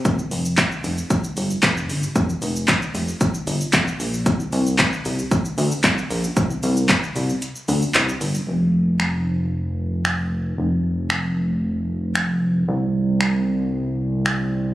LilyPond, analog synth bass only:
\new Staff \with { instrumentName = "Analog synth bass" } { \clef bass \time 4/4 \key c \mixolydian \tempo 4 = 114 f,,8 f,,8. r16 f,,8 r8 g,,8 f,,8 g,,8 | f,,8 f,,8. r16 f,,8 r8 g,,8 f,,8 bes,,8 | c,8 c,8. r16 c,8 r8 d,8 c,8 bes,,8 | c,8 c,8. r16 c,8 r8 d,8 c,8 g,,8 |
f,,1 | f,,1 | c,1 | }